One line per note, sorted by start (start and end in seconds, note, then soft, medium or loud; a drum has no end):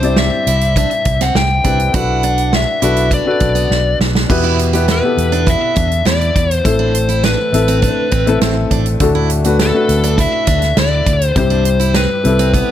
0.00 0.29 C2 loud
0.00 0.43 G2 medium
0.00 0.02 C4 medium
0.00 0.94 C4 medium
0.00 0.16 D4 medium
0.00 0.03 E4 medium
0.00 0.94 E4 medium
0.00 0.03 G4 medium
0.00 0.95 G4 medium
0.00 0.20 C5 medium
0.00 1.97 C5 medium
0.00 closed hi-hat soft
0.04 0.95 D5 medium
0.16 0.77 E5 loud
0.16 snare loud
0.47 0.83 C2 medium
0.47 0.75 E4 medium
0.47 closed hi-hat medium
0.61 closed hi-hat soft
0.76 0.91 D4 medium
0.76 1.23 E5 medium
0.76 kick medium
0.76 closed hi-hat medium
0.91 closed hi-hat soft
1.05 1.30 C2 medium
1.05 kick medium
1.05 closed hi-hat medium
1.21 1.35 C4 medium
1.21 1.36 F#5 medium
1.21 snare soft
1.21 closed hi-hat soft
1.35 1.59 C2 medium
1.35 1.95 G5 medium
1.35 snare medium
1.64 1.89 C2 medium
1.64 1.87 C4 medium
1.64 1.79 D4 medium
1.64 1.88 E4 medium
1.64 1.88 G4 medium
1.64 1.88 B4 medium
1.64 kick medium
1.64 closed hi-hat medium
1.80 closed hi-hat medium
1.94 2.64 B1 medium
1.94 2.62 D4 medium
1.94 2.22 E4 loud
1.94 2.63 F#4 medium
1.94 2.63 A4 medium
1.94 2.63 B4 medium
1.94 2.56 F#5 loud
1.94 kick loud
1.94 closed hi-hat medium
2.23 2.52 D4 medium
2.23 closed hi-hat medium
2.38 closed hi-hat soft
2.53 3.13 E5 medium
2.53 snare medium
2.82 3.19 B1 medium
2.82 3.17 D4 medium
2.82 3.10 E4 medium
2.82 3.17 F#4 medium
2.82 3.17 A4 medium
2.82 3.18 B4 medium
2.82 closed hi-hat medium
2.97 closed hi-hat soft
3.11 3.26 D4 medium
3.11 3.97 D5 medium
3.11 kick medium
3.11 closed hi-hat medium
3.26 4.06 D4 medium
3.26 4.07 F#4 medium
3.26 4.07 A4 medium
3.26 4.07 B4 medium
3.40 3.65 B1 medium
3.40 kick medium
3.40 closed hi-hat medium
3.55 3.70 B3 medium
3.55 closed hi-hat soft
3.70 3.95 B1 loud
3.70 snare soft
4.00 4.24 B1 medium
4.00 snare medium
4.15 snare medium
4.29 4.99 E2 loud
4.29 5.14 B2 medium
4.29 4.64 B3 medium
4.29 4.64 E4 medium
4.29 4.64 G4 medium
4.29 4.65 B4 medium
4.29 kick loud
4.29 crash loud
4.44 4.58 E4 medium
4.59 closed hi-hat medium
4.73 4.96 B3 medium
4.73 4.97 E4 medium
4.73 4.88 G4 medium
4.73 4.97 G4 medium
4.73 4.97 B4 medium
4.73 closed hi-hat medium
4.88 5.02 E4 medium
4.88 5.51 B4 medium
4.88 snare loud
4.88 closed hi-hat medium
5.03 5.94 B3 medium
5.03 5.95 E4 medium
5.03 5.95 G4 medium
5.03 5.95 A4 medium
5.17 5.54 E2 medium
5.17 closed hi-hat medium
5.32 5.46 D4 medium
5.32 closed hi-hat soft
5.46 5.75 E4 medium
5.46 6.07 E5 loud
5.46 kick medium
5.46 closed hi-hat medium
5.76 6.01 E2 medium
5.76 5.90 D4 medium
5.76 kick loud
5.76 closed hi-hat medium
5.92 closed hi-hat soft
6.05 6.30 E2 loud
6.05 6.47 E4 medium
6.05 6.54 D5 medium
6.05 snare loud
6.05 closed hi-hat medium
6.21 closed hi-hat soft
6.36 6.60 E2 medium
6.36 kick medium
6.36 closed hi-hat medium
6.51 6.66 C5 medium
6.51 closed hi-hat medium
6.64 7.35 A1 medium
6.64 7.49 A2 medium
6.64 7.49 E3 medium
6.64 7.33 A3 medium
6.64 7.34 C4 medium
6.64 7.34 E4 medium
6.64 7.34 A4 medium
6.64 7.24 C5 loud
6.64 kick loud
6.64 closed hi-hat loud
6.79 6.93 D4 medium
6.95 closed hi-hat medium
7.09 7.23 E4 medium
7.09 closed hi-hat soft
7.24 7.38 D4 medium
7.24 8.38 B4 medium
7.24 snare loud
7.24 closed hi-hat medium
7.52 7.89 A1 medium
7.52 8.10 A3 medium
7.52 8.10 C4 medium
7.52 8.11 E4 medium
7.52 8.11 A4 medium
7.52 closed hi-hat medium
7.68 7.82 C4 medium
7.68 closed hi-hat soft
7.82 8.10 D4 medium
7.82 kick medium
7.82 closed hi-hat medium
8.12 8.36 A1 medium
8.12 8.26 C4 medium
8.12 kick loud
8.12 closed hi-hat medium
8.27 8.84 A3 medium
8.27 8.84 C4 medium
8.27 8.85 E4 medium
8.27 8.85 A4 loud
8.27 closed hi-hat soft
8.41 8.66 A1 loud
8.41 8.56 C4 medium
8.41 snare loud
8.41 closed hi-hat medium
8.71 8.95 A1 medium
8.71 8.85 D4 medium
8.71 kick medium
8.71 closed hi-hat medium
8.86 closed hi-hat medium
9.00 9.70 D2 medium
9.00 9.85 A2 medium
9.00 9.35 A3 medium
9.00 9.35 D4 medium
9.00 9.35 F#4 medium
9.00 9.36 A4 medium
9.00 kick loud
9.00 closed hi-hat medium
9.15 9.29 E4 medium
9.30 closed hi-hat medium
9.45 9.68 A3 medium
9.45 9.68 D4 medium
9.45 9.59 F#4 medium
9.45 9.68 F#4 medium
9.45 9.68 B4 medium
9.45 closed hi-hat soft
9.59 9.73 E4 medium
9.59 10.21 A4 medium
9.59 snare loud
9.59 closed hi-hat medium
9.73 10.65 A3 medium
9.73 10.66 D4 medium
9.73 10.66 F#4 medium
9.73 10.66 B4 medium
9.89 10.25 D2 medium
9.89 closed hi-hat medium
10.04 10.18 D4 medium
10.04 closed hi-hat soft
10.18 10.46 E4 medium
10.18 10.78 E5 loud
10.18 kick medium
10.18 closed hi-hat medium
10.47 10.72 D2 medium
10.47 10.61 D4 medium
10.47 kick medium
10.47 closed hi-hat medium
10.62 snare soft
10.62 closed hi-hat soft
10.77 11.01 D2 loud
10.77 11.19 E4 medium
10.77 11.25 D5 loud
10.77 snare loud
10.77 closed hi-hat medium
11.06 11.30 D2 medium
11.06 kick loud
11.06 closed hi-hat medium
11.22 11.38 C5 loud
11.22 closed hi-hat medium
11.36 12.06 C2 medium
11.36 12.21 G2 medium
11.36 12.04 G3 medium
11.36 12.05 C4 medium
11.36 12.05 E4 medium
11.36 12.05 G4 medium
11.36 11.95 C5 loud
11.36 kick loud
11.36 closed hi-hat medium
11.50 11.64 D4 medium
11.50 closed hi-hat soft
11.65 closed hi-hat medium
11.80 11.94 E4 medium
11.80 closed hi-hat soft
11.94 12.09 C4 medium
11.94 12.71 B4 medium
11.94 snare loud
11.94 closed hi-hat medium
12.24 12.61 C2 loud
12.24 12.71 G3 medium
12.24 12.71 C4 medium
12.24 12.71 E4 medium
12.24 12.71 A4 medium
12.24 closed hi-hat medium
12.39 12.53 C4 medium
12.39 closed hi-hat soft
12.54 12.71 B3 medium
12.54 kick medium
12.54 closed hi-hat medium